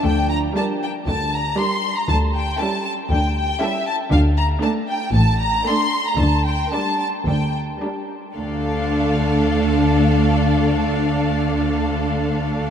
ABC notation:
X:1
M:4/4
L:1/16
Q:1/4=113
K:Dm
V:1 name="Violin section"
g2 b2 a2 g2 a2 b2 c'3 b | a2 g2 a2 a2 g2 g2 e2 a2 | f2 b2 a2 g2 a2 b2 c'3 b | a2 g2 a2 a2 g2 z6 |
f16- | f16 |]
V:2 name="Violin section"
z4 [DB]4 z4 [DB]4 | z4 [EA]4 z4 [EA]4 | z4 [DA]4 z4 [DA]4 | z4 [DB]4 z4 [DB]4 |
[DA]16- | [DA]16 |]
V:3 name="Viola section"
z4 [G,D]4 z4 [G,D]4 | z4 [G,^C]4 z4 [G,C]4 | z4 [A,D]4 z4 [A,D]4 | z4 [G,D]4 z4 [G,D]4 |
[A,D]16- | [A,D]16 |]
V:4 name="Cello section" clef=bass
D,4 z4 D,4 z4 | D,4 z4 D,4 z4 | D,4 z4 A,,4 z4 | D,4 z4 D,4 z4 |
D,16- | D,16 |]
V:5 name="Double bass section" clef=bass
D,,4 z4 D,,4 z4 | D,,4 z4 D,,4 z4 | D,,4 z4 A,,,4 z4 | D,,4 z4 D,,4 z4 |
D,,16- | D,,16 |]